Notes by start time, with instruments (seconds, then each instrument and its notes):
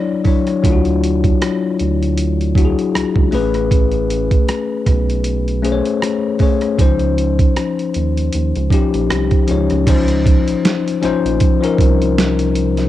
Already playing: tine electric piano F#3 D4 E4 C#5 D5
0.24 tine electric piano F#3 D4 E4 C#5, kick, open hi-hat
0.47 cross-stick, closed hi-hat
0.62 analog synth bass D2, tine electric piano F#3 D4 E4 F4, kick, closed hi-hat
0.72 tine electric piano F#4
0.85 closed hi-hat
1.04 closed hi-hat
1.24 kick, closed hi-hat
1.42 cross-stick, closed hi-hat
1.80 analog synth bass D2, closed hi-hat
2.03 closed hi-hat
2.17 closed hi-hat
2.41 closed hi-hat
2.55 tine electric piano F#3 D4 E4 F#4, kick, closed hi-hat
2.65 tine electric piano G#4
2.79 closed hi-hat
2.95 analog synth bass C#2, cross-stick, closed hi-hat
3.16 analog synth bass C#2, kick
3.31 analog synth bass A1, tine electric piano A3 C#4 G#4 B4, open hi-hat
3.54 cross-stick, closed hi-hat
3.71 kick, closed hi-hat
3.92 closed hi-hat
4.10 closed hi-hat
4.31 kick, closed hi-hat
4.48 cross-stick, closed hi-hat
4.86 analog synth bass B1, kick, cross-stick, closed hi-hat
5.10 closed hi-hat
5.24 closed hi-hat
5.48 closed hi-hat
5.62 tine electric piano A3 C#4 G#4 C5, closed hi-hat
5.72 tine electric piano C#5
5.85 closed hi-hat
6.02 cross-stick, closed hi-hat
6.39 tine electric piano A3 C#4 G#4 C#5, kick, open hi-hat
6.61 cross-stick, closed hi-hat
6.78 analog synth bass C#2, tine electric piano F3 C#4 D#4 C5, kick, closed hi-hat
6.99 closed hi-hat
7.18 closed hi-hat
7.39 kick, closed hi-hat
7.56 cross-stick, closed hi-hat
7.79 closed hi-hat
7.94 analog synth bass D#2, closed hi-hat
8.17 closed hi-hat
8.32 analog synth bass D#2, closed hi-hat
8.55 analog synth bass C#2, closed hi-hat
8.70 tine electric piano F3 C#4 D#4 G4, kick, closed hi-hat
8.94 analog synth bass A#1, closed hi-hat
9.10 analog synth bass C2, cross-stick, closed hi-hat
9.31 kick, closed hi-hat
9.47 analog synth bass C#2, tine electric piano F3 C#4 D#4 C#5, closed hi-hat
9.70 analog synth bass C#2, cross-stick, closed hi-hat
9.86 analog synth bass C#2, tine electric piano E3 C#4 D#4 C5, kick, closed hi-hat, crash
9.92 tine electric piano F3
10.08 closed hi-hat
10.26 kick, closed hi-hat
10.48 analog synth bass A#1, closed hi-hat
10.65 snare, closed hi-hat
10.88 closed hi-hat
11.02 analog synth bass A#1, tine electric piano F3 C#4 D#4 C5, snare, closed hi-hat
11.26 analog synth bass A#1, closed hi-hat
11.40 kick, closed hi-hat
11.61 tine electric piano F3 C#4 D#4 A#4, closed hi-hat
11.78 analog synth bass C2, kick, closed hi-hat
12.02 closed hi-hat
12.18 snare, closed hi-hat
12.39 closed hi-hat
12.55 closed hi-hat
12.77 snare, closed hi-hat